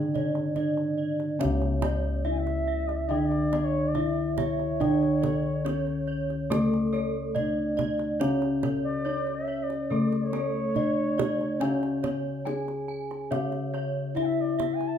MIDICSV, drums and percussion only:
0, 0, Header, 1, 2, 480
1, 0, Start_track
1, 0, Tempo, 832178
1, 808, Time_signature, 4, 2, 24, 8
1, 808, Tempo, 851064
1, 8467, End_track
2, 0, Start_track
2, 0, Title_t, "Kendang"
2, 89, Note_on_c, 9, 64, 50
2, 147, Note_off_c, 9, 64, 0
2, 203, Note_on_c, 9, 62, 21
2, 261, Note_off_c, 9, 62, 0
2, 322, Note_on_c, 9, 64, 45
2, 380, Note_off_c, 9, 64, 0
2, 446, Note_on_c, 9, 62, 17
2, 504, Note_off_c, 9, 62, 0
2, 691, Note_on_c, 9, 62, 18
2, 749, Note_off_c, 9, 62, 0
2, 811, Note_on_c, 9, 63, 48
2, 811, Note_on_c, 9, 64, 70
2, 868, Note_off_c, 9, 63, 0
2, 868, Note_off_c, 9, 64, 0
2, 930, Note_on_c, 9, 62, 24
2, 986, Note_off_c, 9, 62, 0
2, 1046, Note_on_c, 9, 62, 21
2, 1046, Note_on_c, 9, 63, 57
2, 1046, Note_on_c, 9, 64, 68
2, 1102, Note_off_c, 9, 62, 0
2, 1102, Note_off_c, 9, 63, 0
2, 1102, Note_off_c, 9, 64, 0
2, 1410, Note_on_c, 9, 62, 22
2, 1466, Note_off_c, 9, 62, 0
2, 1647, Note_on_c, 9, 62, 22
2, 1704, Note_off_c, 9, 62, 0
2, 1887, Note_on_c, 9, 62, 18
2, 1944, Note_off_c, 9, 62, 0
2, 2007, Note_on_c, 9, 62, 18
2, 2007, Note_on_c, 9, 63, 57
2, 2064, Note_off_c, 9, 62, 0
2, 2064, Note_off_c, 9, 63, 0
2, 2245, Note_on_c, 9, 62, 21
2, 2245, Note_on_c, 9, 64, 43
2, 2301, Note_off_c, 9, 62, 0
2, 2301, Note_off_c, 9, 64, 0
2, 2486, Note_on_c, 9, 62, 19
2, 2486, Note_on_c, 9, 63, 56
2, 2486, Note_on_c, 9, 64, 55
2, 2543, Note_off_c, 9, 62, 0
2, 2543, Note_off_c, 9, 63, 0
2, 2543, Note_off_c, 9, 64, 0
2, 2609, Note_on_c, 9, 62, 19
2, 2665, Note_off_c, 9, 62, 0
2, 2732, Note_on_c, 9, 64, 55
2, 2789, Note_off_c, 9, 64, 0
2, 2853, Note_on_c, 9, 62, 22
2, 2910, Note_off_c, 9, 62, 0
2, 2970, Note_on_c, 9, 62, 22
2, 2970, Note_on_c, 9, 63, 53
2, 2970, Note_on_c, 9, 64, 62
2, 3027, Note_off_c, 9, 62, 0
2, 3027, Note_off_c, 9, 63, 0
2, 3027, Note_off_c, 9, 64, 0
2, 3211, Note_on_c, 9, 63, 56
2, 3267, Note_off_c, 9, 63, 0
2, 3328, Note_on_c, 9, 62, 16
2, 3385, Note_off_c, 9, 62, 0
2, 3572, Note_on_c, 9, 62, 21
2, 3629, Note_off_c, 9, 62, 0
2, 3693, Note_on_c, 9, 63, 58
2, 3750, Note_off_c, 9, 63, 0
2, 3817, Note_on_c, 9, 62, 21
2, 3873, Note_off_c, 9, 62, 0
2, 3934, Note_on_c, 9, 62, 21
2, 3990, Note_off_c, 9, 62, 0
2, 4168, Note_on_c, 9, 62, 20
2, 4168, Note_on_c, 9, 64, 57
2, 4225, Note_off_c, 9, 62, 0
2, 4225, Note_off_c, 9, 64, 0
2, 4410, Note_on_c, 9, 62, 19
2, 4410, Note_on_c, 9, 63, 49
2, 4410, Note_on_c, 9, 64, 53
2, 4466, Note_off_c, 9, 62, 0
2, 4466, Note_off_c, 9, 63, 0
2, 4466, Note_off_c, 9, 64, 0
2, 4527, Note_on_c, 9, 62, 21
2, 4583, Note_off_c, 9, 62, 0
2, 4648, Note_on_c, 9, 63, 44
2, 4648, Note_on_c, 9, 64, 62
2, 4705, Note_off_c, 9, 63, 0
2, 4705, Note_off_c, 9, 64, 0
2, 4767, Note_on_c, 9, 62, 22
2, 4823, Note_off_c, 9, 62, 0
2, 4886, Note_on_c, 9, 62, 19
2, 4886, Note_on_c, 9, 63, 57
2, 4886, Note_on_c, 9, 64, 56
2, 4942, Note_off_c, 9, 62, 0
2, 4942, Note_off_c, 9, 63, 0
2, 4942, Note_off_c, 9, 64, 0
2, 5245, Note_on_c, 9, 62, 18
2, 5301, Note_off_c, 9, 62, 0
2, 5489, Note_on_c, 9, 62, 22
2, 5545, Note_off_c, 9, 62, 0
2, 5727, Note_on_c, 9, 62, 21
2, 5784, Note_off_c, 9, 62, 0
2, 5845, Note_on_c, 9, 62, 23
2, 5845, Note_on_c, 9, 63, 48
2, 5901, Note_off_c, 9, 62, 0
2, 5901, Note_off_c, 9, 63, 0
2, 6086, Note_on_c, 9, 62, 18
2, 6086, Note_on_c, 9, 64, 55
2, 6142, Note_off_c, 9, 62, 0
2, 6142, Note_off_c, 9, 64, 0
2, 6331, Note_on_c, 9, 62, 22
2, 6331, Note_on_c, 9, 63, 59
2, 6331, Note_on_c, 9, 64, 57
2, 6388, Note_off_c, 9, 62, 0
2, 6388, Note_off_c, 9, 63, 0
2, 6388, Note_off_c, 9, 64, 0
2, 6453, Note_on_c, 9, 62, 21
2, 6509, Note_off_c, 9, 62, 0
2, 6566, Note_on_c, 9, 64, 59
2, 6622, Note_off_c, 9, 64, 0
2, 6690, Note_on_c, 9, 62, 22
2, 6746, Note_off_c, 9, 62, 0
2, 6808, Note_on_c, 9, 62, 22
2, 6808, Note_on_c, 9, 63, 60
2, 6808, Note_on_c, 9, 64, 54
2, 6864, Note_off_c, 9, 62, 0
2, 6864, Note_off_c, 9, 63, 0
2, 6864, Note_off_c, 9, 64, 0
2, 7050, Note_on_c, 9, 62, 22
2, 7050, Note_on_c, 9, 63, 45
2, 7107, Note_off_c, 9, 62, 0
2, 7107, Note_off_c, 9, 63, 0
2, 7171, Note_on_c, 9, 62, 20
2, 7227, Note_off_c, 9, 62, 0
2, 7412, Note_on_c, 9, 62, 22
2, 7469, Note_off_c, 9, 62, 0
2, 7529, Note_on_c, 9, 63, 57
2, 7586, Note_off_c, 9, 63, 0
2, 7645, Note_on_c, 9, 62, 21
2, 7701, Note_off_c, 9, 62, 0
2, 7769, Note_on_c, 9, 62, 17
2, 7826, Note_off_c, 9, 62, 0
2, 8009, Note_on_c, 9, 62, 18
2, 8009, Note_on_c, 9, 64, 49
2, 8065, Note_off_c, 9, 62, 0
2, 8065, Note_off_c, 9, 64, 0
2, 8250, Note_on_c, 9, 62, 23
2, 8250, Note_on_c, 9, 63, 54
2, 8250, Note_on_c, 9, 64, 51
2, 8306, Note_off_c, 9, 62, 0
2, 8306, Note_off_c, 9, 63, 0
2, 8306, Note_off_c, 9, 64, 0
2, 8369, Note_on_c, 9, 62, 21
2, 8425, Note_off_c, 9, 62, 0
2, 8467, End_track
0, 0, End_of_file